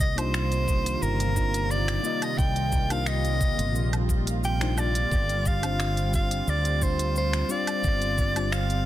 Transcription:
Already playing: C2 C3 D#3 G3 A#3 F4
0.00 D#5, kick, shaker
0.16 A#3 D4 D#4 F4 C5, closed hi-hat, low woodblock, shaker
0.34 finger snap, shaker
0.52 closed hi-hat, shaker
0.68 kick, shaker
0.86 closed hi-hat, shaker
1.02 G1 A#4, shaker
1.20 closed hi-hat, shaker
1.35 A#3 D4 D#4 F4 C5, kick, shaker
1.54 closed hi-hat, shaker
1.71 D5, shaker
1.88 finger snap, closed hi-hat, shaker
2.03 A#3 D#4 F4 D5 D#5, shaker
2.22 D#5, closed hi-hat, low woodblock, shaker
2.38 C2 G5, kick, shaker
2.56 closed hi-hat, shaker
2.72 kick, shaker
2.90 A#3 D4 D#4 F4 C5 F5, closed hi-hat, low woodblock, shaker
3.06 D#5, finger snap, shaker
3.25 closed hi-hat, shaker
3.41 kick, shaker
3.58 G1, closed hi-hat, shaker
3.74 A#1, shaker
3.93 closed hi-hat, low woodblock, shaker
4.09 kick, shaker
4.27 closed hi-hat, shaker
4.44 G5, shaker
4.60 A#3 D4 D#4 F4 C5, finger snap, closed hi-hat, shaker
4.76 A#3 D4 D#4 F4 D5, low woodblock, shaker
4.95 closed hi-hat, shaker
5.11 G1 C4, kick, shaker
5.29 closed hi-hat, shaker
5.46 F5, kick, shaker
5.62 G3 C4 D4 F4 C5, closed hi-hat, low woodblock, shaker
5.80 finger snap, shaker
5.97 closed hi-hat, shaker
6.14 F5, kick, shaker
6.31 closed hi-hat, shaker
6.47 D2 D5, shaker
6.65 closed hi-hat, shaker
6.81 G3 C4 D4 F4 C5, kick, shaker
6.99 closed hi-hat, shaker
7.16 C5, shaker
7.33 finger snap, closed hi-hat, shaker
7.48 G3 C4 D4 F4 D5 F5, shaker
7.67 closed hi-hat, low woodblock, shaker
7.84 G1, kick, shaker
8.02 closed hi-hat, shaker
8.18 kick, shaker
8.35 G3 C4 D4 F4 C5, closed hi-hat, low woodblock, shaker
8.52 F5, finger snap, shaker
8.70 closed hi-hat, shaker

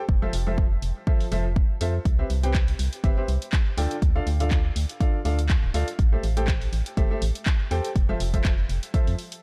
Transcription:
0.09 F1, kick
0.22 F3 F4 A4 C5 E5
0.33 F1, open hi-hat
0.47 F3 F4 A4 C5 E5
0.58 kick
0.82 F1, open hi-hat
1.07 F3 F4 A4 C5 E5, kick
1.20 open hi-hat
1.32 F1 F3 F4 A4 C5 E5, open hi-hat
1.56 kick
1.81 F2 F4 A4 C5 E5, open hi-hat
2.05 C2, kick, closed hi-hat
2.19 C4 G4 B4 C5 E5
2.30 C2, open hi-hat
2.43 C4 G4 B4 C5 G5, closed hi-hat
2.54 kick, clap, closed hi-hat
2.68 open hi-hat
2.79 C2, open hi-hat
2.93 closed hi-hat
3.04 G1 C4 G4 B4 C5 E5, kick, closed hi-hat
3.17 C4 G4 B4 C5 E5
3.28 C2, open hi-hat
3.42 closed hi-hat
3.53 kick, clap, closed hi-hat
3.77 D2 D3 F4 A4 D5 G5, open hi-hat
3.91 closed hi-hat
4.02 D2, kick, closed hi-hat
4.16 D3 F4 A4 D5 F5
4.27 D2, open hi-hat
4.40 D3 F4 A4 D5 F5, closed hi-hat
4.51 kick, clap, closed hi-hat
4.76 D2, open hi-hat
4.89 closed hi-hat
5.00 D3 F4 A4 D5 F5, kick, closed hi-hat
5.25 D2 D3 F4 A4 D5 F5, open hi-hat
5.39 closed hi-hat
5.49 kick, clap, closed hi-hat
5.63 D1
5.74 D2 F4 A4 D5 F5, open hi-hat
5.88 closed hi-hat
5.99 A1, kick, closed hi-hat
6.12 A3 G4 A4 C5 E5
6.23 A1, open hi-hat
6.37 A3 G4 A4 C5 G5, closed hi-hat
6.48 kick, clap, closed hi-hat
6.62 open hi-hat
6.73 A1, open hi-hat
6.86 closed hi-hat
6.97 G1 A3 G4 A4 C5 E5, kick, closed hi-hat
7.11 A3 G4 A4 C5 E5
7.22 A1, open hi-hat
7.35 closed hi-hat
7.46 kick, clap, closed hi-hat
7.71 E2 G4 A4 C5 G5, open hi-hat
7.85 closed hi-hat
7.96 F1, kick, closed hi-hat
8.09 F3 F4 A4 C5 E5
8.20 F1, open hi-hat
8.34 F3 F4 A4 C5 E5, kick, closed hi-hat
8.44 kick, clap, closed hi-hat
8.69 F1, open hi-hat
8.83 closed hi-hat
8.94 F3 F4 A4 C5 E5, kick, closed hi-hat
9.07 F2, open hi-hat
9.19 open hi-hat
9.32 closed hi-hat

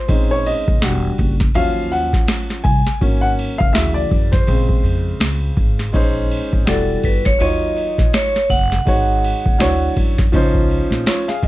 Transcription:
Already playing: C5
0.08 A#1 G#3 C4 C#4 D#4, kick, ride
0.31 C#5
0.46 D#5, ride
0.68 F#1, kick
0.81 E1 G3 D4 F#4, snare, hi-hat pedal, ride
1.18 F#1, kick, ride
1.40 kick, snare
1.55 D#2 F3 F#3 C#4 F5, ride
1.92 F#5, ride
2.13 kick, snare
2.28 snare, hi-hat pedal, ride
2.50 snare
2.64 C2 G#5, kick, ride
2.87 snare
3.01 G#1 F#3 A#3 C#4, kick, ride
3.21 F#5
3.39 ride
3.58 F#1 F5, kick, ride
3.73 D2 C#3 E3 F#3 E5, snare, hi-hat pedal, ride
3.94 D5
4.11 F#2, kick, ride
4.32 C5, kick, snare, ride
4.47 A#2 C#3 G#3 C4, kick, ride
4.69 kick
4.84 F2, ride
5.06 ride
5.20 C#2, snare, hi-hat pedal, ride
5.57 G#1, kick, ride
5.79 snare, ride
5.92 A#1 G#3 C#4 D#4 C5, kick, crash, ride
6.31 ride
6.53 G#1, kick
6.66 E1 G3 E4 F#4 A4 D5, snare, hi-hat pedal, ride
7.03 G1 B4, kick, ride
7.25 C#5, kick, snare
7.39 D#2 F#3 D#4 F4 C#5 D#5, ride
7.77 ride
7.98 A#1, kick, snare
8.13 C#5, snare, hi-hat pedal, ride
8.36 snare
8.50 F#1 F#5, kick, ride
8.72 snare
8.85 G#1 G#3 D#4 F#4 C#5, kick, ride
9.24 ride
9.46 F#1, kick
9.58 D2 F#3 D4 E4 C#5, snare, hi-hat pedal, ride
9.97 F#2, kick, ride
10.18 kick, snare
10.32 C#2 F3 C#4 D#4 C5, kick, ride
10.54 kick
10.70 ride
10.90 A#1, snare
11.06 F4 C#5, snare, hi-hat pedal, ride
11.28 G#4 F5, snare
11.43 G#1 D#5, kick, ride

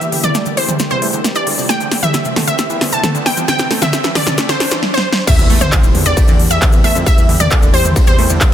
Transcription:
Already playing: E3 G3 A#3 G4 E5, riser
0.01 E2 E3, closed hi-hat, cabasa
0.12 E2 D3, open hi-hat
0.23 E2 C3 D5, closed hi-hat, mid tom, cabasa
0.35 A3, snare, closed hi-hat, cabasa
0.46 E1 D3, closed hi-hat, cabasa
0.57 E2 C5, open hi-hat
0.68 E2 E3, closed hi-hat, mid tom, cabasa
0.79 D3, snare, closed hi-hat, cabasa
0.90 E2 C3 C5, cabasa
1.02 E2 A3, open hi-hat
1.13 E2 D3, closed hi-hat, cabasa
1.24 snare, closed hi-hat, cabasa
1.35 E2 E3 D5, closed hi-hat, cabasa
1.47 E2 D3, open hi-hat
1.58 F2 C3, open hi-hat, cabasa
1.69 A3 C4 G5, snare, closed hi-hat, cabasa
1.80 E2 D3, closed hi-hat, cabasa
1.92 E2, snare, open hi-hat
2.03 E2 E3 E5, closed hi-hat, mid tom, cabasa
2.14 D3, snare, closed hi-hat, cabasa
2.25 E1 C3, closed hi-hat, cabasa
2.36 E2 A3, snare, open hi-hat, mid tom
2.47 E2 D3 E5, closed hi-hat, cabasa
2.58 snare, closed hi-hat, cabasa
2.70 E2 E3, cabasa
2.81 E2 D3, snare, open hi-hat
2.92 E2 C3 A5, closed hi-hat, cabasa
3.03 A3, snare, closed hi-hat, mid tom, cabasa
3.15 E2 D3, closed hi-hat, cabasa
3.26 E2 G5, snare, open hi-hat
3.37 F2 E3, closed hi-hat, cabasa
3.48 D3 G5, snare, closed hi-hat, cabasa
3.59 E2 C3, snare, closed hi-hat, cabasa
3.71 E2 A3, snare, open hi-hat
3.82 E2 D3 E5, snare, closed hi-hat, mid tom, cabasa
3.93 snare, closed hi-hat, cabasa
4.04 E1 E3, snare, closed hi-hat, cabasa
4.15 E2 D3 D5, snare, open hi-hat, mid tom
4.27 E2 C3, snare, closed hi-hat, mid tom, cabasa
4.38 A3, snare, closed hi-hat, cabasa
4.49 E2 D3 C5, snare, closed hi-hat, cabasa
4.60 E2, snare, open hi-hat
4.71 E2 E3, snare, closed hi-hat, cabasa
4.83 snare
4.94 C5, snare
5.13 snare
5.27 D3 E3 G3 A#3 G4 E5, kick, closed hi-hat, crash, ride, impact, cabasa
5.39 E2 C3, closed hi-hat, cabasa
5.50 E2 A3, open hi-hat
5.61 E2 D3 C5, closed hi-hat, mid tom, cabasa
5.72 kick, clap, closed hi-hat, ride, cabasa
5.83 E1 E3, closed hi-hat, cabasa
5.95 E2 D3, open hi-hat, mid tom
6.06 E2 C3 D5, closed hi-hat, cabasa
6.17 A3, kick, closed hi-hat, ride, cabasa
6.28 E2 D3, closed hi-hat, cabasa
6.39 E2, open hi-hat
6.51 E2 E3 E5, closed hi-hat, cabasa
6.62 D3, kick, clap, closed hi-hat, mid tom, ride, cabasa
6.72 E2 C3, closed hi-hat, cabasa
6.84 E2 A3 E5, open hi-hat
6.95 F2 D3, closed hi-hat, cabasa
7.06 E5, kick, closed hi-hat, ride, cabasa
7.18 E2 E3, closed hi-hat, cabasa
7.29 E2 D3, open hi-hat
7.40 E2 C3 D5, closed hi-hat, mid tom, cabasa
7.51 A3, kick, clap, closed hi-hat, ride, cabasa
7.62 E1 D3, closed hi-hat, cabasa
7.74 E2 C5, open hi-hat
7.85 E2 E3, closed hi-hat, mid tom, cabasa
7.96 D3, kick, closed hi-hat, ride, cabasa
8.07 E2 C3 C5, closed hi-hat, cabasa
8.18 E2 A3, open hi-hat
8.30 E2 D3, closed hi-hat, cabasa
8.41 kick, clap, closed hi-hat, ride, cabasa

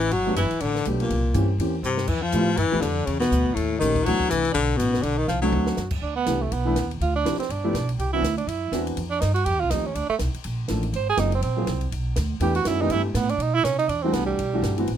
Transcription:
Already playing: A1 E3 E4
0.01 ride
0.11 G1 F#3 F#4, ride
0.26 F#3 A3 B3 D4 G4
0.36 F#1 E3 E4, hi-hat pedal, ride
0.51 muted upright bass stroke, ride
0.60 A1 D3 D4, ride
0.75 snare
0.85 B1 F#3 A3 B3 D4 G4, hi-hat pedal, ride
1.00 A#2 A#3, ride
1.10 C2, ride
1.34 G2 E3 A#3 C4 C#4 G4, hi-hat pedal, ride
1.58 E2 E3 A#3 C4 C#4 G4, ride
1.83 G2 C3 C4, hi-hat pedal
1.97 snare
2.08 F2 E3 E4, kick, crash
2.22 F3 F4
2.32 A2 F3 A3 B3 E4 G4, hi-hat pedal, ride
2.57 G2 E3 E4, ride
2.65 F2
2.72 E2 F3 A3 B3 E4 G4
2.81 F2 D3 D4, hi-hat pedal, ride
3.06 E2 C#3 C#4, ride
3.19 B2 B3, snare, ride
3.32 D2, hi-hat pedal
3.46 kick
3.54 D#2 A2 A3, ride
3.79 A#1 D#3 A3 A#3 C#4 D#4 G4, hi-hat pedal, ride
3.95 kick, ride
4.03 D2 E3 F#3 A3 B3 F#4, ride
4.07 D4 F#4
4.20 muted upright bass stroke, kick
4.29 C2 E3 E4, hi-hat pedal, ride
4.45 ride
4.52 B1 D3 D4, ride
4.77 A1 B2 B3, hi-hat pedal, ride
4.94 snare
5.02 B1 D3 D4, ride
5.17 D#3 D#4
5.28 C2 F3 F4, snare, hi-hat pedal
5.42 F#3 A3 C4 D4 F#4 A4, high tom
5.52 D2, high tom
5.66 snare
5.77 F#2, snare, hi-hat pedal
5.91 kick, crash
6.02 D2 D4
6.16 B3
6.26 C2 E3 A3 B3 D4 G4, snare, hi-hat pedal, ride
6.42 A3
6.52 B1 B3, ride
6.65 E3 A3 B3 D4 E4
6.76 D#2, snare, hi-hat pedal, ride
6.91 ride
7.00 D2 F4, ride
7.16 D4
7.24 C2 F3 C4 D4 E4 G4, snare, hi-hat pedal, ride
7.34 snare
7.38 C4, muted upright bass stroke, snare, ride
7.49 G1 D4, ride
7.64 F3 A3 B3 E4 G4
7.73 B1, snare, hi-hat pedal, ride
7.89 ride
7.98 C2 G4, ride
8.13 E3 B3 C4 D4 E4 F#4
8.22 D2, snare, hi-hat pedal, ride
8.37 D4, ride
8.47 F#2 E4, ride
8.72 E2 E3 B3 C4 D4 F#4, snare, hi-hat pedal, ride
8.87 ride
8.97 F2, ride
9.10 D4
9.20 G2 D#4, snare, hi-hat pedal, ride
9.34 F#4, ride
9.45 F2 G4, ride
9.55 D#2
9.60 C2 F4
9.70 D#2 F3 A3 C4 D#4 G4, snare, hi-hat pedal, ride
9.86 C#4
9.95 D2 D4, ride
10.09 A3, muted upright bass stroke
10.19 C2, snare, hi-hat pedal, ride
10.34 muted upright bass stroke, ride
10.44 A#1, ride
10.68 A1 F3 A3 A#3 D4 A4, snare, hi-hat pedal, ride
10.83 ride
10.93 G#1 C5, ride
11.10 G#4
11.17 F#1 F#3 A#3 C4 D#4 F4 G#4, snare, hi-hat pedal, ride
11.32 C4, ride
11.42 A#1 C4, ride
11.57 F#3 A#3 C4 F4 G#4
11.67 C2, snare, hi-hat pedal, ride
11.81 ride
11.92 B1, ride
12.16 D2, snare, hi-hat pedal, ride
12.40 E2 E3 A3 B3 D4 G4, ride
12.55 F#4, ride
12.65 F#2 D#3 G#3 A#3 C#4 E4 F#4, snare, hi-hat pedal, ride
12.81 E3 A3 B3 D4 D#4 G4
12.90 G2 E3 A3 B3 D4 E4 G4, ride
13.05 G3
13.14 A2 B3, snare, hi-hat pedal, ride
13.29 D4, ride
13.38 B2 D#4, ride
13.55 E4
13.63 C3 C#4, snare, hi-hat pedal, ride
13.79 D#4, ride
13.88 E2 D4, ride
14.02 E3 G3 A3 C4 D4 F#4
14.13 C2 B3, snare, hi-hat pedal, ride
14.26 G3
14.38 B1, ride
14.53 E3 G3 A3 D4 F#4
14.62 G1, snare, hi-hat pedal, ride
14.77 E3 A3 B3 C4 F#4, ride
14.87 A1, ride

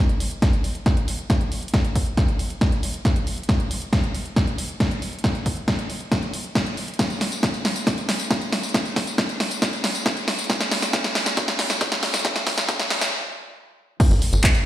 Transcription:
0.09 closed hi-hat
0.20 open hi-hat
0.31 closed hi-hat
0.42 kick, snare, closed hi-hat
0.53 closed hi-hat
0.64 open hi-hat
0.75 closed hi-hat
0.86 kick, snare, closed hi-hat
0.97 closed hi-hat
1.08 open hi-hat
1.19 closed hi-hat
1.30 kick, snare, closed hi-hat
1.41 closed hi-hat
1.52 open hi-hat
1.63 closed hi-hat
1.68 closed hi-hat
1.74 kick, snare, closed hi-hat
1.85 closed hi-hat
1.95 kick, open hi-hat
2.06 closed hi-hat
2.17 kick, snare, closed hi-hat
2.28 closed hi-hat
2.39 open hi-hat
2.50 closed hi-hat
2.61 kick, snare, closed hi-hat
2.72 closed hi-hat
2.83 open hi-hat
2.94 closed hi-hat
3.05 kick, snare, closed hi-hat
3.16 closed hi-hat
3.27 open hi-hat
3.38 closed hi-hat
3.43 closed hi-hat
3.49 kick, snare, closed hi-hat
3.60 closed hi-hat
3.71 open hi-hat
3.82 closed hi-hat
3.93 kick, snare, closed hi-hat
4.04 closed hi-hat
4.15 open hi-hat
4.26 closed hi-hat
4.36 kick, snare, closed hi-hat
4.47 closed hi-hat
4.58 open hi-hat
4.69 closed hi-hat
4.80 kick, snare, closed hi-hat
4.91 closed hi-hat
5.02 open hi-hat
5.13 closed hi-hat
5.19 closed hi-hat
5.24 kick, snare, closed hi-hat
5.35 closed hi-hat
5.46 kick, open hi-hat
5.57 closed hi-hat
5.68 kick, snare, closed hi-hat
5.79 closed hi-hat
5.90 open hi-hat
6.01 closed hi-hat
6.12 kick, snare, closed hi-hat
6.23 closed hi-hat
6.33 open hi-hat
6.44 closed hi-hat
6.55 kick, snare, closed hi-hat
6.66 closed hi-hat
6.77 open hi-hat
6.88 closed hi-hat
6.94 closed hi-hat
6.99 kick, snare, closed hi-hat, tambourine
7.10 closed hi-hat, tambourine
7.21 snare, open hi-hat
7.32 closed hi-hat, tambourine
7.43 kick, snare, closed hi-hat, tambourine
7.54 closed hi-hat, tambourine
7.65 snare, open hi-hat
7.76 closed hi-hat, tambourine
7.87 kick, snare, closed hi-hat, tambourine
7.98 closed hi-hat, tambourine
8.09 snare, open hi-hat
8.20 closed hi-hat, tambourine
8.31 kick, snare, closed hi-hat, tambourine
8.42 closed hi-hat, tambourine
8.52 snare, open hi-hat
8.63 closed hi-hat, tambourine
8.69 closed hi-hat
8.74 kick, snare, closed hi-hat, tambourine
8.85 closed hi-hat, tambourine
8.96 kick, snare, open hi-hat
9.07 closed hi-hat, tambourine
9.18 kick, snare, closed hi-hat, tambourine
9.29 closed hi-hat, tambourine
9.40 snare, open hi-hat
9.51 closed hi-hat, tambourine
9.62 kick, snare, closed hi-hat, tambourine
9.73 closed hi-hat, tambourine
9.84 snare, open hi-hat
9.95 closed hi-hat, tambourine
10.06 kick, snare, closed hi-hat, tambourine
10.17 closed hi-hat, tambourine
10.28 snare, open hi-hat
10.39 closed hi-hat, tambourine
10.44 closed hi-hat
10.50 kick, snare, closed hi-hat, tambourine
10.61 snare, closed hi-hat, tambourine
10.71 snare, open hi-hat
10.82 snare, tambourine
10.93 kick, snare, closed hi-hat, tambourine
11.04 snare, closed hi-hat, tambourine
11.15 snare, open hi-hat
11.26 snare, closed hi-hat, tambourine
11.37 kick, snare, closed hi-hat, tambourine
11.48 snare, closed hi-hat, tambourine
11.59 snare, open hi-hat
11.70 snare, closed hi-hat, tambourine
11.81 kick, snare, closed hi-hat, tambourine
11.92 snare, closed hi-hat, tambourine
12.03 snare, open hi-hat
12.14 snare, closed hi-hat, tambourine
12.19 closed hi-hat
12.25 kick, snare, closed hi-hat, tambourine
12.36 snare, closed hi-hat, tambourine
12.47 kick, snare, open hi-hat
12.58 snare, closed hi-hat, tambourine
12.69 kick, snare, closed hi-hat, tambourine
12.79 snare, closed hi-hat, tambourine
12.90 snare, open hi-hat
13.01 snare, closed hi-hat, tambourine
14.00 kick, closed hi-hat, crash, tambourine
14.11 G1, closed hi-hat, tambourine
14.22 open hi-hat
14.33 G1, closed hi-hat, tambourine
14.44 kick, clap, closed hi-hat, tambourine
14.55 closed hi-hat, tambourine

